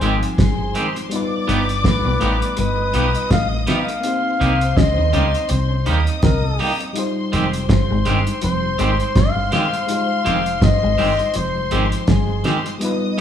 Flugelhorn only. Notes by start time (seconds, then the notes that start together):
Already playing: C5
0.40 G#4
1.87 B4
2.60 B4
3.32 F5
3.69 F5
4.77 D#5
5.51 C5
6.23 A#4
7.70 C5
8.44 C5
9.17 F5
9.53 F5
10.64 D#5
11.36 C5
12.10 G#4